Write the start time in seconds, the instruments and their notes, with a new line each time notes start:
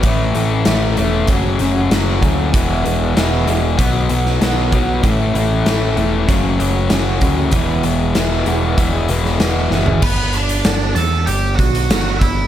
0.02 picked electric bass A1, steel-string acoustic guitar A2 E3 A3 C#4 A4, kick, closed hi-hat
0.34 picked electric bass A1, distorted electric guitar A2, steel-string acoustic guitar E3 A3 C#4 A4, closed hi-hat
0.50 steel-string acoustic guitar A3 C#4 A4
0.64 picked electric bass A1, steel-string acoustic guitar A2 E3 A3 C#4 A4, snare, closed hi-hat
0.96 picked electric bass E1, distorted electric guitar A2, steel-string acoustic guitar E3 A3 C#4 A4, closed hi-hat
1.27 picked electric bass F#1, steel-string acoustic guitar F#2 C#3 F#3 A3 C#4 F#4, kick, closed hi-hat
1.42 steel-string acoustic guitar F#3 A3 C#4 F#4
1.59 picked electric bass F#1, distorted electric guitar F#2 C#3, steel-string acoustic guitar F#3 A3 C#4 F#4, closed hi-hat
1.75 steel-string acoustic guitar F#3 A3 C#4 F#4
1.90 picked electric bass F#1, steel-string acoustic guitar F#2 C#3 F#3 A3 C#4 F#4, snare, closed hi-hat
2.20 picked electric bass D2, distorted electric guitar F#2 C#3, steel-string acoustic guitar F#3 A3 C#4 F#4, kick, closed hi-hat
2.37 steel-string acoustic guitar F#3 A3 C#4 F#4
2.52 picked electric bass E1, steel-string acoustic guitar E2 B2 E3 G#3 B3 G#4, kick, closed hi-hat
2.83 picked electric bass E1, distorted electric guitar E2 B2, steel-string acoustic guitar E3 G#3 B3 G#4, closed hi-hat
2.99 steel-string acoustic guitar E3 G#3 B3 G#4
3.14 picked electric bass E1, steel-string acoustic guitar E2 B2 E3 G#3 B3 G#4, snare, closed hi-hat
3.45 picked electric bass E1, distorted electric guitar E2 B2, steel-string acoustic guitar E3 G#3 B3 G#4, closed hi-hat
3.77 picked electric bass B1, steel-string acoustic guitar B2 F#3 B3 D#4 F#4, kick, closed hi-hat
3.93 steel-string acoustic guitar B3 D#4 F#4
4.09 picked electric bass B1, distorted electric guitar B2, steel-string acoustic guitar F#3 B3 D#4 F#4, closed hi-hat
4.25 steel-string acoustic guitar B3 D#4 F#4, snare
4.40 picked electric bass B1, steel-string acoustic guitar B2 F#3 B3 D#4 F#4, snare, closed hi-hat
4.71 picked electric bass B1, distorted electric guitar B2, steel-string acoustic guitar F#3 B3 D#4 F#4, kick, closed hi-hat
4.86 steel-string acoustic guitar B3 D#4 F#4
5.02 picked electric bass A1, steel-string acoustic guitar A2 E3 A3 C#4 A4, kick, closed hi-hat
5.33 picked electric bass A1, distorted electric guitar A2, steel-string acoustic guitar E3 A3 C#4 A4, closed hi-hat
5.49 steel-string acoustic guitar A3 C#4 A4
5.64 picked electric bass A1, steel-string acoustic guitar A2 E3 A3 C#4 A4, snare, closed hi-hat
5.95 picked electric bass E1, distorted electric guitar A2, steel-string acoustic guitar E3 A3 C#4, closed hi-hat
6.26 picked electric bass F#1, steel-string acoustic guitar F#2 C#3 F#3 A3 C#4 F#4, kick, closed hi-hat
6.42 steel-string acoustic guitar F#3 A3 C#4 F#4
6.58 picked electric bass F#1, distorted electric guitar F#2 C#3, steel-string acoustic guitar F#3 A3 C#4 F#4, closed hi-hat
6.74 steel-string acoustic guitar F#3 A3 C#4 F#4
6.90 picked electric bass F#1, steel-string acoustic guitar F#2 C#3 F#3 A3 C#4 F#4, snare, closed hi-hat
7.21 picked electric bass D2, distorted electric guitar F#2 C#3, steel-string acoustic guitar F#3 A3 C#4 F#4, kick, closed hi-hat
7.36 steel-string acoustic guitar F#3 A3 C#4 F#4
7.51 picked electric bass E1, steel-string acoustic guitar E2 B2 E3 G#3 B3 G#4, kick, closed hi-hat
7.82 picked electric bass E1, distorted electric guitar E2 B2, steel-string acoustic guitar E3 G#3 B3 G#4, closed hi-hat
7.99 steel-string acoustic guitar E3 G#3 B3 G#4
8.14 picked electric bass E1, steel-string acoustic guitar E2 B2 E3 G#3 B3 G#4, snare, closed hi-hat
8.46 picked electric bass E1, distorted electric guitar E2 B2, steel-string acoustic guitar E3 G#3 B3 G#4, closed hi-hat
8.76 picked electric bass E1, distorted electric guitar E2 B2, steel-string acoustic guitar E3 G#3 B3 G#4, kick, closed hi-hat
8.92 steel-string acoustic guitar E3 G#3 B3 G#4
9.07 picked electric bass E1, distorted electric guitar E2 B2, steel-string acoustic guitar E3 G#3 B3 G#4, closed hi-hat
9.23 steel-string acoustic guitar E3 G#3 B3 G#4, snare
9.39 picked electric bass E1, steel-string acoustic guitar E2 B2 E3 G#3 B3 G#4, snare, closed hi-hat
9.70 picked electric bass F#1, distorted electric guitar E2 B2, steel-string acoustic guitar E3 G#3 B3 G#4, snare
9.86 steel-string acoustic guitar E3 G#3 B3 G#4, floor tom
10.02 picked electric bass G1, steel-string acoustic guitar G2, lead electric guitar B3 B4, kick, crash
10.33 steel-string acoustic guitar G3, lead electric guitar D4 D5, closed hi-hat
10.49 closed hi-hat
10.64 picked electric bass G1, steel-string acoustic guitar B3, snare, closed hi-hat
10.95 picked electric bass E2, lead electric guitar A4 A5, closed hi-hat
11.26 picked electric bass G1, steel-string acoustic guitar D4, lead electric guitar G4 G5, closed hi-hat
11.56 picked electric bass B1, steel-string acoustic guitar B3, lead electric guitar F#4 F#5, kick, closed hi-hat
11.75 closed hi-hat
11.88 picked electric bass G1, steel-string acoustic guitar G3, snare, closed hi-hat
12.19 steel-string acoustic guitar B3, lead electric guitar E4 E5, kick, closed hi-hat